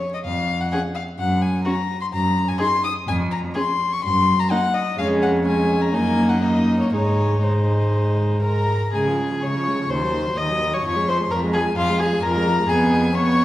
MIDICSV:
0, 0, Header, 1, 5, 480
1, 0, Start_track
1, 0, Key_signature, -5, "major"
1, 0, Tempo, 466926
1, 1222, Time_signature, 4, 2, 24, 8
1, 2182, Tempo, 476569
1, 6022, Tempo, 499584
1, 9382, Tempo, 465116
1, 13525, End_track
2, 0, Start_track
2, 0, Title_t, "Violin"
2, 0, Program_c, 0, 40
2, 0, Note_on_c, 0, 73, 73
2, 134, Note_off_c, 0, 73, 0
2, 140, Note_on_c, 0, 75, 72
2, 189, Note_off_c, 0, 75, 0
2, 255, Note_on_c, 0, 77, 93
2, 623, Note_on_c, 0, 78, 69
2, 639, Note_off_c, 0, 77, 0
2, 733, Note_off_c, 0, 78, 0
2, 739, Note_on_c, 0, 78, 91
2, 821, Note_off_c, 0, 78, 0
2, 974, Note_on_c, 0, 77, 71
2, 1057, Note_off_c, 0, 77, 0
2, 1223, Note_on_c, 0, 78, 86
2, 1458, Note_on_c, 0, 80, 76
2, 1474, Note_off_c, 0, 78, 0
2, 1686, Note_off_c, 0, 80, 0
2, 1692, Note_on_c, 0, 82, 80
2, 2049, Note_off_c, 0, 82, 0
2, 2069, Note_on_c, 0, 84, 86
2, 2116, Note_off_c, 0, 84, 0
2, 2190, Note_on_c, 0, 82, 96
2, 2547, Note_on_c, 0, 80, 79
2, 2562, Note_off_c, 0, 82, 0
2, 2661, Note_off_c, 0, 80, 0
2, 2667, Note_on_c, 0, 84, 99
2, 2898, Note_off_c, 0, 84, 0
2, 2905, Note_on_c, 0, 87, 104
2, 2985, Note_off_c, 0, 87, 0
2, 3147, Note_on_c, 0, 80, 94
2, 3228, Note_off_c, 0, 80, 0
2, 3381, Note_on_c, 0, 82, 83
2, 3462, Note_off_c, 0, 82, 0
2, 3631, Note_on_c, 0, 84, 90
2, 3995, Note_on_c, 0, 85, 95
2, 4010, Note_off_c, 0, 84, 0
2, 4107, Note_off_c, 0, 85, 0
2, 4113, Note_on_c, 0, 84, 108
2, 4471, Note_on_c, 0, 82, 92
2, 4486, Note_off_c, 0, 84, 0
2, 4583, Note_on_c, 0, 78, 98
2, 4598, Note_off_c, 0, 82, 0
2, 4820, Note_on_c, 0, 75, 93
2, 4835, Note_off_c, 0, 78, 0
2, 5057, Note_off_c, 0, 75, 0
2, 5063, Note_on_c, 0, 77, 93
2, 5143, Note_off_c, 0, 77, 0
2, 5305, Note_on_c, 0, 78, 84
2, 5385, Note_off_c, 0, 78, 0
2, 5542, Note_on_c, 0, 80, 83
2, 5902, Note_on_c, 0, 82, 79
2, 5917, Note_off_c, 0, 80, 0
2, 6029, Note_on_c, 0, 80, 92
2, 6043, Note_off_c, 0, 82, 0
2, 6363, Note_on_c, 0, 78, 76
2, 6378, Note_off_c, 0, 80, 0
2, 6487, Note_on_c, 0, 75, 81
2, 6501, Note_off_c, 0, 78, 0
2, 6847, Note_off_c, 0, 75, 0
2, 6852, Note_on_c, 0, 73, 69
2, 6965, Note_off_c, 0, 73, 0
2, 6970, Note_on_c, 0, 73, 82
2, 7458, Note_on_c, 0, 72, 61
2, 7473, Note_off_c, 0, 73, 0
2, 8426, Note_off_c, 0, 72, 0
2, 8431, Note_on_c, 0, 82, 83
2, 8912, Note_on_c, 0, 80, 64
2, 8926, Note_off_c, 0, 82, 0
2, 9369, Note_off_c, 0, 80, 0
2, 9374, Note_on_c, 0, 85, 68
2, 9863, Note_on_c, 0, 84, 77
2, 9878, Note_off_c, 0, 85, 0
2, 10354, Note_off_c, 0, 84, 0
2, 10360, Note_on_c, 0, 87, 75
2, 10727, Note_on_c, 0, 85, 70
2, 10742, Note_off_c, 0, 87, 0
2, 10844, Note_off_c, 0, 85, 0
2, 10850, Note_on_c, 0, 85, 79
2, 11083, Note_on_c, 0, 84, 71
2, 11099, Note_off_c, 0, 85, 0
2, 11319, Note_on_c, 0, 82, 74
2, 11335, Note_off_c, 0, 84, 0
2, 11553, Note_off_c, 0, 82, 0
2, 11559, Note_on_c, 0, 80, 85
2, 11793, Note_off_c, 0, 80, 0
2, 11801, Note_on_c, 0, 77, 97
2, 12027, Note_off_c, 0, 77, 0
2, 12033, Note_on_c, 0, 80, 88
2, 12267, Note_on_c, 0, 82, 107
2, 12283, Note_off_c, 0, 80, 0
2, 12743, Note_on_c, 0, 80, 90
2, 12758, Note_off_c, 0, 82, 0
2, 13222, Note_on_c, 0, 85, 100
2, 13237, Note_off_c, 0, 80, 0
2, 13525, Note_off_c, 0, 85, 0
2, 13525, End_track
3, 0, Start_track
3, 0, Title_t, "Violin"
3, 0, Program_c, 1, 40
3, 742, Note_on_c, 1, 68, 53
3, 824, Note_off_c, 1, 68, 0
3, 1695, Note_on_c, 1, 66, 62
3, 1778, Note_off_c, 1, 66, 0
3, 2646, Note_on_c, 1, 68, 61
3, 2726, Note_off_c, 1, 68, 0
3, 3613, Note_on_c, 1, 68, 61
3, 3693, Note_off_c, 1, 68, 0
3, 4582, Note_on_c, 1, 63, 63
3, 4663, Note_off_c, 1, 63, 0
3, 5050, Note_on_c, 1, 61, 66
3, 5501, Note_off_c, 1, 61, 0
3, 5538, Note_on_c, 1, 61, 59
3, 6018, Note_on_c, 1, 63, 62
3, 6032, Note_off_c, 1, 61, 0
3, 6476, Note_off_c, 1, 63, 0
3, 6482, Note_on_c, 1, 63, 60
3, 6961, Note_off_c, 1, 63, 0
3, 6973, Note_on_c, 1, 63, 59
3, 7439, Note_off_c, 1, 63, 0
3, 7444, Note_on_c, 1, 63, 53
3, 8405, Note_off_c, 1, 63, 0
3, 8411, Note_on_c, 1, 70, 62
3, 8871, Note_off_c, 1, 70, 0
3, 8905, Note_on_c, 1, 68, 53
3, 9376, Note_on_c, 1, 73, 65
3, 9391, Note_off_c, 1, 68, 0
3, 9863, Note_on_c, 1, 72, 66
3, 9878, Note_off_c, 1, 73, 0
3, 10348, Note_on_c, 1, 75, 70
3, 10363, Note_off_c, 1, 72, 0
3, 10727, Note_on_c, 1, 73, 56
3, 10742, Note_off_c, 1, 75, 0
3, 10836, Note_off_c, 1, 73, 0
3, 10842, Note_on_c, 1, 73, 66
3, 11078, Note_off_c, 1, 73, 0
3, 11088, Note_on_c, 1, 72, 72
3, 11171, Note_off_c, 1, 72, 0
3, 11318, Note_on_c, 1, 70, 71
3, 11401, Note_off_c, 1, 70, 0
3, 11553, Note_on_c, 1, 68, 71
3, 11636, Note_off_c, 1, 68, 0
3, 11791, Note_on_c, 1, 65, 75
3, 12027, Note_on_c, 1, 68, 74
3, 12043, Note_off_c, 1, 65, 0
3, 12261, Note_off_c, 1, 68, 0
3, 12268, Note_on_c, 1, 70, 86
3, 12737, Note_off_c, 1, 70, 0
3, 12744, Note_on_c, 1, 68, 69
3, 13211, Note_off_c, 1, 68, 0
3, 13215, Note_on_c, 1, 73, 80
3, 13525, Note_off_c, 1, 73, 0
3, 13525, End_track
4, 0, Start_track
4, 0, Title_t, "Viola"
4, 0, Program_c, 2, 41
4, 752, Note_on_c, 2, 61, 53
4, 834, Note_off_c, 2, 61, 0
4, 1709, Note_on_c, 2, 61, 57
4, 1791, Note_off_c, 2, 61, 0
4, 2659, Note_on_c, 2, 63, 54
4, 2740, Note_off_c, 2, 63, 0
4, 3622, Note_on_c, 2, 61, 57
4, 3702, Note_off_c, 2, 61, 0
4, 4584, Note_on_c, 2, 58, 57
4, 4664, Note_off_c, 2, 58, 0
4, 5062, Note_on_c, 2, 56, 68
4, 5507, Note_off_c, 2, 56, 0
4, 5548, Note_on_c, 2, 56, 66
4, 6018, Note_off_c, 2, 56, 0
4, 6029, Note_on_c, 2, 58, 69
4, 6484, Note_off_c, 2, 58, 0
4, 6492, Note_on_c, 2, 58, 57
4, 6981, Note_on_c, 2, 56, 56
4, 6996, Note_off_c, 2, 58, 0
4, 7452, Note_off_c, 2, 56, 0
4, 7458, Note_on_c, 2, 56, 55
4, 8693, Note_off_c, 2, 56, 0
4, 8907, Note_on_c, 2, 56, 50
4, 9027, Note_on_c, 2, 53, 42
4, 9041, Note_off_c, 2, 56, 0
4, 9150, Note_on_c, 2, 56, 46
4, 9165, Note_off_c, 2, 53, 0
4, 9264, Note_on_c, 2, 53, 37
4, 9279, Note_off_c, 2, 56, 0
4, 9370, Note_off_c, 2, 53, 0
4, 9376, Note_on_c, 2, 56, 41
4, 9502, Note_on_c, 2, 53, 44
4, 9518, Note_off_c, 2, 56, 0
4, 9634, Note_on_c, 2, 56, 42
4, 9649, Note_off_c, 2, 53, 0
4, 9748, Note_on_c, 2, 53, 44
4, 9764, Note_off_c, 2, 56, 0
4, 9859, Note_off_c, 2, 53, 0
4, 9866, Note_on_c, 2, 51, 46
4, 9989, Note_on_c, 2, 54, 44
4, 10004, Note_off_c, 2, 51, 0
4, 10110, Note_on_c, 2, 51, 46
4, 10125, Note_off_c, 2, 54, 0
4, 10238, Note_on_c, 2, 54, 42
4, 10253, Note_off_c, 2, 51, 0
4, 10353, Note_off_c, 2, 54, 0
4, 10360, Note_on_c, 2, 51, 49
4, 10477, Note_on_c, 2, 54, 42
4, 10493, Note_off_c, 2, 51, 0
4, 10602, Note_on_c, 2, 51, 47
4, 10618, Note_off_c, 2, 54, 0
4, 10726, Note_on_c, 2, 54, 45
4, 10741, Note_off_c, 2, 51, 0
4, 10829, Note_off_c, 2, 54, 0
4, 10835, Note_on_c, 2, 53, 52
4, 10955, Note_on_c, 2, 56, 46
4, 10970, Note_off_c, 2, 53, 0
4, 11076, Note_on_c, 2, 53, 57
4, 11091, Note_off_c, 2, 56, 0
4, 11205, Note_on_c, 2, 56, 44
4, 11220, Note_off_c, 2, 53, 0
4, 11324, Note_off_c, 2, 56, 0
4, 11332, Note_on_c, 2, 53, 53
4, 11446, Note_on_c, 2, 56, 54
4, 11461, Note_off_c, 2, 53, 0
4, 11565, Note_on_c, 2, 53, 50
4, 11581, Note_off_c, 2, 56, 0
4, 11677, Note_on_c, 2, 56, 55
4, 11693, Note_off_c, 2, 53, 0
4, 11791, Note_off_c, 2, 56, 0
4, 11797, Note_on_c, 2, 53, 61
4, 11920, Note_on_c, 2, 56, 55
4, 11935, Note_off_c, 2, 53, 0
4, 12034, Note_on_c, 2, 53, 55
4, 12050, Note_off_c, 2, 56, 0
4, 12155, Note_on_c, 2, 56, 51
4, 12171, Note_off_c, 2, 53, 0
4, 12266, Note_off_c, 2, 56, 0
4, 12272, Note_on_c, 2, 53, 63
4, 12403, Note_on_c, 2, 56, 54
4, 12418, Note_off_c, 2, 53, 0
4, 12521, Note_on_c, 2, 53, 64
4, 12536, Note_off_c, 2, 56, 0
4, 12641, Note_on_c, 2, 56, 54
4, 12656, Note_off_c, 2, 53, 0
4, 12749, Note_off_c, 2, 56, 0
4, 12755, Note_on_c, 2, 59, 66
4, 13193, Note_off_c, 2, 59, 0
4, 13226, Note_on_c, 2, 59, 69
4, 13525, Note_off_c, 2, 59, 0
4, 13525, End_track
5, 0, Start_track
5, 0, Title_t, "Cello"
5, 0, Program_c, 3, 42
5, 267, Note_on_c, 3, 41, 64
5, 663, Note_off_c, 3, 41, 0
5, 1226, Note_on_c, 3, 42, 70
5, 1624, Note_off_c, 3, 42, 0
5, 2183, Note_on_c, 3, 42, 68
5, 2582, Note_off_c, 3, 42, 0
5, 3141, Note_on_c, 3, 41, 85
5, 3542, Note_off_c, 3, 41, 0
5, 4105, Note_on_c, 3, 42, 69
5, 4505, Note_off_c, 3, 42, 0
5, 5067, Note_on_c, 3, 41, 72
5, 6022, Note_on_c, 3, 42, 63
5, 6036, Note_off_c, 3, 41, 0
5, 6961, Note_off_c, 3, 42, 0
5, 6967, Note_on_c, 3, 44, 60
5, 8680, Note_off_c, 3, 44, 0
5, 8915, Note_on_c, 3, 49, 52
5, 9328, Note_off_c, 3, 49, 0
5, 9381, Note_on_c, 3, 49, 59
5, 9814, Note_off_c, 3, 49, 0
5, 9869, Note_on_c, 3, 39, 55
5, 10302, Note_off_c, 3, 39, 0
5, 10359, Note_on_c, 3, 39, 54
5, 10788, Note_off_c, 3, 39, 0
5, 10844, Note_on_c, 3, 41, 63
5, 11266, Note_off_c, 3, 41, 0
5, 11323, Note_on_c, 3, 41, 70
5, 11742, Note_off_c, 3, 41, 0
5, 11798, Note_on_c, 3, 41, 66
5, 12217, Note_off_c, 3, 41, 0
5, 12271, Note_on_c, 3, 41, 70
5, 12692, Note_off_c, 3, 41, 0
5, 12745, Note_on_c, 3, 41, 73
5, 13525, Note_off_c, 3, 41, 0
5, 13525, End_track
0, 0, End_of_file